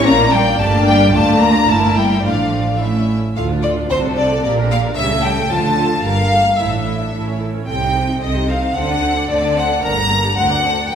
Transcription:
0.06 double bass section A#1, viola section A#3 D4, cello section A#3, violin section F4 D5 A#5
0.32 cello section G3, violin section G5
0.59 double bass section G1, cello section A3, viola section A#3 D4, violin section G4 D5 A5
0.86 cello section G3, violin section G5
1.13 double bass section D2, cello section A3, viola section A3 D4, violin section F4 D5 A5
1.40 cello section A#3, violin section A#5
1.68 double bass section G1, cello section A3, viola section A#3 E4, violin section E4 A#4 A5
1.96 cello section G3, violin section G5
2.23 double bass section A1, cello section F3, viola section A3 D4, violin section F4 D5 F5
2.80 viola section A3 C#4, violin section E4 E5
3.36 double bass section D2, cello section D2, viola section F4 A4, violin section F4 F5
3.50 viola section D4 F4
3.63 viola section F4 A4, violin section D5
3.76 viola section D4 F4
3.90 double bass section C2, cello section C3, viola section C4 F#4, violin section A4 C5
4.03 viola section D4 A4
4.17 viola section C4 F#4, violin section D5
4.31 viola section D4 A4
4.43 double bass section A#1, cello section A#2, viola section A#3 G4, violin section A#4 D5
4.57 viola section D4 A#4
4.71 viola section A#3 G4, violin section F5
4.84 viola section D4 A#4
4.97 double bass section C#2, cello section C#3, viola section G3 G4, violin section A4 E5
5.11 viola section A3 A4
5.23 viola section G3 G4, violin section G5
5.37 viola section A3 A4
5.49 double bass section D2, cello section D3, viola section F3 F4, violin section F4 A5
5.63 viola section A3 D4
5.76 viola section F3 F4
5.90 viola section A3 D4
6.03 double bass section G1, cello section G2, viola section G3 G4, violin section A#4 F5
6.18 viola section A#3 A#4
6.31 viola section G3 G4, violin section A4
6.44 viola section A#3 A#4
6.58 double bass section A1, cello section A2, viola section E4, violin section A4 E5
6.72 viola section D4
6.85 viola section E4
6.99 viola section D4
7.13 double bass section A1, cello section A2, viola section E4 A4
7.26 viola section C#4 C#5
7.40 viola section E4 A4
7.53 viola section C#4 C#5
7.67 double bass section C2, cello section C3, viola section C4 A4, violin section G4 G5
7.81 viola section D#4 G4
7.95 viola section C4 A4
8.08 viola section D#4 G4
8.21 double bass section C2, cello section C3, viola section C4 A4, violin section C5 D#5
8.35 viola section D#4 G4
8.48 viola section C4 A4, violin section F5
8.62 viola section D#4 G4
8.75 double bass section D2, cello section D3, viola section C4 C5, violin section A4 F#5
8.89 viola section D4 D5
9.01 viola section C4 C5
9.15 viola section D4 D5
9.30 double bass section D2, cello section D3, viola section C4 C5, violin section D5
9.43 viola section D4 D5
9.55 viola section C4 C5, violin section F#5
9.69 viola section D4 D5
9.82 double bass section G1, cello section G2, viola section A#3 A#4, violin section A#5
9.96 viola section D4 G4
10.10 viola section A#3 A#4
10.23 viola section D4 G4
10.35 cello section D2, double bass section D2, viola section C4 C5, violin section A#4 F#5
10.49 viola section D4 D5
10.63 viola section C4 C5, violin section A4
10.77 viola section D4 D5
10.91 viola section A#3 A#4, violin section A#4 G5

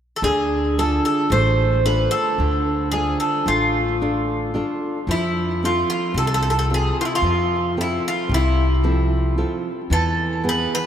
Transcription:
0.16 bouzouki A4
0.22 upright bass D2, nylon-string guitar D3, bouzouki G#4
0.78 nylon-string guitar D4 F4 A4, bouzouki A4
1.05 bouzouki A4
1.30 upright bass A1, nylon-string guitar A3, bouzouki C5
1.85 nylon-string guitar D4 F4 A4, bouzouki B4
2.11 bouzouki A4
2.38 upright bass D2, nylon-string guitar D3
2.92 nylon-string guitar D4 F4 A4, bouzouki G#4
3.20 bouzouki A4
3.46 upright bass A1, nylon-string guitar A3, bouzouki F4
4.02 nylon-string guitar D4 F4 A4
4.54 nylon-string guitar D4 F4 A4
5.07 upright bass F2, nylon-string guitar F3, bouzouki E4
5.63 nylon-string guitar C4 F4 A4, bouzouki F4
5.90 bouzouki F4
6.14 upright bass C2, nylon-string guitar C3, bouzouki A4
6.27 bouzouki A4
6.34 bouzouki A4
6.43 bouzouki A4
6.50 bouzouki A4
6.59 bouzouki A4
6.70 nylon-string guitar C4 F4 A4
6.74 bouzouki G#4
7.01 bouzouki F4
7.05 bouzouki E4
7.15 bouzouki F4
7.22 upright bass F2, nylon-string guitar F3
7.77 nylon-string guitar C4 A4, bouzouki E4
8.08 bouzouki F4
8.29 upright bass C2, nylon-string guitar C3
8.34 bouzouki E4
8.84 nylon-string guitar F3 C4 A4
9.38 nylon-string guitar C4 F4 A4
9.90 upright bass E2, nylon-string guitar E3, bouzouki A4
10.43 nylon-string guitar B3 E4 G#4
10.49 bouzouki B4
10.75 bouzouki B4

